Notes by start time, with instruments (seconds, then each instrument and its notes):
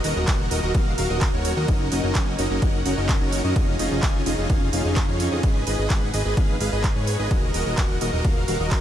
Already playing: downlifter
0.04 analog synth bass D#1, supersaw synth F#4 A#4 D#5, open hi-hat
0.16 analog synth bass D#1, supersaw synth F#4 A#4 D#5
0.28 analog synth bass D#1, supersaw synth F#4 A#4 F#5, kick, clap, ride
0.51 analog synth bass D#1, supersaw synth F#4 A#4 D#5, open hi-hat
0.63 analog synth bass D#1, supersaw synth F#4 A#4 D#5
0.74 analog synth bass D#1, kick, ride
0.98 analog synth bass D#1, supersaw synth F#4 A#4 F5, open hi-hat
1.10 analog synth bass D#1, supersaw synth F#4 A#4 D#5
1.21 kick, clap, ride
1.33 analog synth bass D#1, supersaw synth F#4 A#4 C#5
1.45 open hi-hat
1.57 analog synth bass D#2, supersaw synth F#4 A#4 D#5
1.68 analog synth bass F#1, supersaw synth C#4 D#4 F#4 D#5, kick, ride
1.92 analog synth bass F#1, supersaw synth C#4 D#4 F#4 A#4 D#5, open hi-hat
2.03 analog synth bass F#1, supersaw synth C#4 D#4 F#4 A#4 D#5
2.15 supersaw synth C#4 D#4 F#4, kick, clap, ride
2.38 analog synth bass F#1, supersaw synth C#4 D#4 F#4 A#4 D#5, open hi-hat
2.50 analog synth bass F#1, supersaw synth C#4 D#4 F#4 A#4 D#5
2.62 supersaw synth C#4 D#4 F#4 A#4 F#5, kick, ride
2.85 analog synth bass F#1, supersaw synth C#4 D#4 F#4 A#4 F#5, open hi-hat
2.97 analog synth bass F#1, supersaw synth C#4 D#4 F#4 A#4 D#5
3.09 kick, clap, ride
3.21 analog synth bass F#1, supersaw synth C#4 D#4 F#4 A#4 C#5
3.32 open hi-hat
3.44 analog synth bass F#2, supersaw synth C#4 D#4 F#4 A#4 D#5
3.56 analog synth bass F1, kick, ride
3.79 analog synth bass F1, supersaw synth C#4 D#4 F4 G#4 D#5, open hi-hat
3.91 analog synth bass F1, supersaw synth C#4 D#4 F4 G#4 D#5
4.03 kick, clap, ride
4.26 analog synth bass F1, supersaw synth C#4 D#4 F4 G#4 D#5, open hi-hat
4.38 analog synth bass F1, supersaw synth C#4 D#4 F4 G#4 D#5
4.50 supersaw synth C#4 D#4 F4, kick, ride
4.73 analog synth bass F1, supersaw synth C#4 D#4 F4 G#4 F5, open hi-hat
4.85 analog synth bass F1, supersaw synth C#4 D#4 F4 G#4 D#5
4.96 kick, clap, ride
5.08 analog synth bass F2, supersaw synth C#4 D#4 F4 G#4 C#5
5.20 open hi-hat
5.31 analog synth bass F2, supersaw synth C#4 D#4 F4 G#4 D#5
5.43 analog synth bass G#1, supersaw synth G#4 B4 D#5, kick, ride
5.67 analog synth bass G#1, supersaw synth G#4 B4 D#5, open hi-hat
5.78 analog synth bass G#1, supersaw synth G#4 B4 D#5
5.90 analog synth bass G#1, kick, clap, ride
6.14 analog synth bass G#1, supersaw synth G#4 B4 D#5, open hi-hat
6.25 analog synth bass G#1, supersaw synth G#4 B4 D#5
6.37 analog synth bass G#1, supersaw synth G#4 F5, kick, ride
6.60 analog synth bass G#1, supersaw synth G#4 B4 F5, open hi-hat
6.72 analog synth bass G#1, supersaw synth G#4 B4 D#5
6.84 kick, clap, ride
6.96 analog synth bass G#2, supersaw synth G#4 B4 C#5
7.07 open hi-hat
7.19 analog synth bass G#1, supersaw synth G#4 B4 D#5
7.31 supersaw synth F#4 A#4 D#5, kick, ride
7.54 analog synth bass D#1, supersaw synth F#4 A#4 D#5, open hi-hat
7.66 analog synth bass D#1, supersaw synth F#4 A#4 D#5
7.78 supersaw synth F#4 A#4 F#5, kick, clap, ride
8.01 analog synth bass D#1, supersaw synth F#4 A#4 D#5, open hi-hat
8.13 analog synth bass D#1, supersaw synth F#4 A#4 D#5
8.24 kick, ride
8.48 analog synth bass D#1, supersaw synth F#4 A#4 F5, open hi-hat
8.60 analog synth bass D#1, supersaw synth F#4 A#4 D#5
8.71 kick, clap, ride